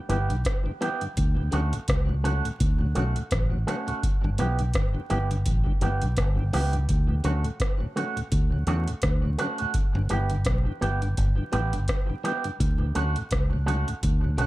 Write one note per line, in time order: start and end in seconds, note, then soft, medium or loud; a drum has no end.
0.09 0.28 G1 loud
0.09 0.18 E3 medium
0.09 0.18 G3 medium
0.09 0.30 B3 medium
0.09 0.18 B3 medium
0.09 0.30 E4 medium
0.09 0.30 G4 medium
0.09 closed hi-hat medium
0.29 0.44 B1 medium
0.29 0.36 G2 medium
0.29 0.36 D3 medium
0.29 closed hi-hat medium
0.45 kick loud
0.45 cross-stick loud
0.45 closed hi-hat medium
0.66 0.72 G2 medium
0.66 0.72 D3 medium
0.81 0.89 E3 medium
0.81 0.89 G3 medium
0.81 1.01 B3 medium
0.81 0.90 B3 medium
0.81 1.02 E4 medium
0.81 1.02 G4 loud
0.81 cross-stick medium
0.81 closed hi-hat medium
1.01 1.08 G2 medium
1.01 1.08 D3 medium
1.01 closed hi-hat soft
1.17 1.49 D2 loud
1.17 kick loud
1.17 closed hi-hat loud
1.37 1.43 D2 medium
1.37 1.43 A2 medium
1.51 1.71 D2 medium
1.51 1.60 D3 medium
1.51 1.61 F#3 medium
1.51 1.73 A3 medium
1.51 1.61 C#4 medium
1.51 1.73 C#4 medium
1.51 1.73 F#4 medium
1.51 closed hi-hat medium
1.73 1.79 D2 medium
1.73 1.80 A2 medium
1.73 closed hi-hat soft
1.88 2.41 C#2 medium
1.88 kick loud
1.88 cross-stick loud
1.88 closed hi-hat medium
2.09 2.15 D2 medium
2.09 2.15 A2 medium
2.24 2.33 D3 medium
2.24 2.33 F#3 medium
2.24 2.44 A3 medium
2.24 2.45 C#4 loud
2.24 2.33 C#4 medium
2.24 2.45 F#4 medium
2.24 closed hi-hat medium
2.45 2.51 D2 medium
2.45 2.51 A2 medium
2.45 closed hi-hat soft
2.60 2.92 D2 loud
2.60 kick loud
2.60 closed hi-hat loud
2.81 2.87 D2 medium
2.81 2.87 A2 medium
2.95 3.14 B1 medium
2.95 3.04 D3 medium
2.95 3.05 F#3 medium
2.95 3.16 A3 medium
2.95 3.16 C#4 medium
2.95 3.04 C#4 medium
2.95 3.16 F#4 medium
2.95 closed hi-hat medium
3.16 3.23 D2 medium
3.16 3.23 A2 medium
3.16 closed hi-hat medium
3.31 3.64 A1 medium
3.31 kick loud
3.31 cross-stick loud
3.31 closed hi-hat medium
3.52 3.58 D2 medium
3.52 3.58 A2 medium
3.67 3.76 D3 medium
3.67 3.76 F#3 medium
3.67 3.87 A3 medium
3.67 3.87 C#4 medium
3.67 3.76 C#4 medium
3.67 3.87 F#4 medium
3.67 cross-stick medium
3.67 closed hi-hat medium
3.87 3.94 D2 medium
3.87 3.93 A2 medium
3.87 4.00 A3 medium
3.87 4.00 C#4 medium
3.87 4.00 F#4 medium
3.87 closed hi-hat soft
4.03 kick loud
4.03 closed hi-hat medium
4.24 4.38 G1 medium
4.24 4.30 G2 medium
4.24 4.30 D3 medium
4.38 4.71 B1 medium
4.38 4.47 E3 medium
4.38 4.47 G3 medium
4.38 4.59 B3 medium
4.38 4.48 B3 medium
4.38 4.59 E4 medium
4.38 4.60 G4 medium
4.38 closed hi-hat medium
4.59 4.65 G2 medium
4.59 4.66 D3 medium
4.59 closed hi-hat soft
4.74 4.93 G1 medium
4.74 kick loud
4.74 cross-stick loud
4.74 closed hi-hat medium
4.95 5.01 G2 medium
4.95 5.01 D3 medium
5.10 5.43 G1 medium
5.10 5.18 E3 medium
5.10 5.18 G3 medium
5.10 5.30 B3 medium
5.10 5.18 B3 medium
5.10 5.30 E4 medium
5.10 5.30 G4 loud
5.10 closed hi-hat medium
5.31 5.37 G2 medium
5.31 5.37 D3 medium
5.31 muted clean electric guitar stroke soft
5.31 closed hi-hat soft
5.46 5.64 A1 medium
5.46 kick loud
5.46 closed hi-hat loud
5.66 5.73 G2 medium
5.66 5.73 D3 medium
5.66 kick medium
5.81 6.00 G1 medium
5.81 5.90 E3 medium
5.81 5.90 G3 medium
5.81 6.02 B3 medium
5.81 5.90 B3 medium
5.81 6.02 E4 medium
5.81 6.03 G4 medium
5.81 closed hi-hat medium
6.01 6.19 B1 medium
6.01 6.08 G2 medium
6.01 6.08 D3 medium
6.01 closed hi-hat medium
6.17 6.50 G1 loud
6.17 kick loud
6.17 cross-stick loud
6.17 closed hi-hat medium
6.37 6.44 G2 medium
6.37 6.44 D3 medium
6.53 6.86 C#2 medium
6.53 6.61 E3 medium
6.53 6.62 G3 medium
6.53 6.73 B3 medium
6.53 6.62 B3 medium
6.53 6.74 E4 medium
6.53 6.74 G4 loud
6.53 cross-stick medium
6.53 open hi-hat medium
6.73 6.80 G2 medium
6.73 6.79 D3 medium
6.73 closed hi-hat soft
6.89 7.21 D2 medium
6.89 kick loud
6.89 closed hi-hat medium
7.09 7.15 D2 medium
7.09 7.15 A2 medium
7.24 7.43 D2 medium
7.24 7.32 D3 medium
7.24 7.33 F#3 medium
7.24 7.45 A3 medium
7.24 7.45 C#4 medium
7.24 7.33 C#4 medium
7.24 7.45 F#4 loud
7.24 closed hi-hat medium
7.44 7.51 D2 medium
7.44 7.51 A2 medium
7.44 closed hi-hat soft
7.60 kick loud
7.60 cross-stick loud
7.60 closed hi-hat medium
7.80 7.87 D2 medium
7.80 7.87 A2 medium
7.96 8.04 D3 medium
7.96 8.04 F#3 medium
7.96 8.16 A3 medium
7.96 8.16 C#4 medium
7.96 8.05 C#4 medium
7.96 8.17 F#4 loud
7.96 closed hi-hat medium
8.16 8.23 D2 medium
8.16 8.22 A2 medium
8.16 closed hi-hat soft
8.32 8.64 D2 medium
8.32 kick loud
8.32 closed hi-hat loud
8.52 8.58 D2 medium
8.52 8.58 A2 medium
8.67 8.86 E2 loud
8.67 8.76 D3 medium
8.67 8.76 F#3 medium
8.67 8.88 A3 medium
8.67 8.88 C#4 medium
8.67 8.76 C#4 medium
8.67 8.88 F#4 medium
8.67 closed hi-hat medium
8.88 8.95 D2 medium
8.88 8.94 A2 medium
8.88 closed hi-hat medium
9.02 9.35 D2 loud
9.02 kick loud
9.02 cross-stick loud
9.02 closed hi-hat medium
9.25 9.31 D2 medium
9.25 9.30 A2 medium
9.38 9.48 D3 medium
9.38 9.48 F#3 medium
9.38 9.59 A3 medium
9.38 9.59 C#4 medium
9.38 9.48 C#4 medium
9.38 9.58 F#4 medium
9.38 cross-stick medium
9.38 closed hi-hat medium
9.58 9.66 D2 medium
9.58 9.66 A2 medium
9.58 9.71 A3 medium
9.58 9.71 C#4 medium
9.58 9.71 F#4 medium
9.58 closed hi-hat soft
9.74 kick loud
9.74 closed hi-hat loud
9.95 10.09 G1 loud
9.95 10.02 G2 medium
9.95 10.02 D3 medium
10.09 10.43 G1 medium
10.09 10.19 E3 medium
10.09 10.19 G3 medium
10.09 10.30 B3 medium
10.09 10.19 B3 medium
10.09 10.31 E4 medium
10.09 10.31 G4 loud
10.09 closed hi-hat medium
10.30 10.37 G2 medium
10.30 10.37 D3 medium
10.30 closed hi-hat soft
10.45 10.64 B1 medium
10.45 kick loud
10.45 cross-stick loud
10.45 closed hi-hat medium
10.67 10.73 G2 medium
10.67 10.73 D3 medium
10.81 11.14 G1 loud
10.81 10.90 E3 medium
10.81 10.90 G3 medium
10.81 11.02 B3 medium
10.81 10.90 B3 medium
10.81 11.01 E4 medium
10.81 11.00 G4 loud
10.81 closed hi-hat medium
11.01 11.08 G2 medium
11.01 11.08 D3 medium
11.01 muted clean electric guitar stroke soft
11.01 closed hi-hat soft
11.17 11.36 G1 loud
11.17 kick loud
11.17 closed hi-hat loud
11.38 11.44 G2 medium
11.38 11.44 D3 medium
11.52 11.72 A1 medium
11.52 11.61 E3 medium
11.52 11.61 G3 medium
11.52 11.73 B3 medium
11.52 11.61 B3 medium
11.52 11.73 E4 medium
11.52 11.73 G4 medium
11.52 closed hi-hat medium
11.73 11.87 G1 medium
11.73 11.80 G2 medium
11.73 11.80 D3 medium
11.73 closed hi-hat medium
11.88 kick loud
11.88 cross-stick loud
11.88 closed hi-hat medium
12.10 12.16 G2 medium
12.10 12.16 D3 medium
12.24 12.32 E3 medium
12.24 12.33 G3 medium
12.24 12.44 B3 medium
12.24 12.33 B3 medium
12.24 12.45 E4 medium
12.24 12.45 G4 medium
12.24 cross-stick medium
12.24 closed hi-hat medium
12.44 12.51 G2 medium
12.44 12.51 D3 medium
12.44 closed hi-hat soft
12.60 12.92 D2 loud
12.60 kick loud
12.60 closed hi-hat loud
12.80 12.86 D2 medium
12.80 12.86 A2 medium
12.95 13.14 D2 medium
12.95 13.04 D3 medium
12.95 13.04 F#3 medium
12.95 13.16 A3 medium
12.95 13.16 C#4 medium
12.95 13.05 C#4 medium
12.95 13.16 F#4 medium
12.95 closed hi-hat medium
13.16 13.23 D2 medium
13.16 13.23 A2 medium
13.16 closed hi-hat medium
13.31 13.84 C#2 medium
13.31 kick loud
13.31 cross-stick loud
13.31 closed hi-hat medium
13.53 13.59 D2 medium
13.53 13.59 A2 medium
13.66 13.76 D3 medium
13.66 13.76 F#3 medium
13.66 13.87 A3 medium
13.66 13.87 C#4 medium
13.66 13.76 C#4 medium
13.66 13.88 F#4 loud
13.66 closed hi-hat medium
13.88 13.94 D2 medium
13.88 13.94 A2 medium
13.88 closed hi-hat soft
14.03 14.35 D2 loud
14.03 kick loud
14.03 closed hi-hat loud
14.24 14.30 D2 medium
14.24 14.30 A2 medium
14.37 14.46 B1 medium
14.37 14.46 D3 medium
14.37 14.46 F#3 medium
14.37 14.46 A3 medium
14.37 14.46 C#4 medium
14.37 14.46 F#4 medium
14.37 closed hi-hat medium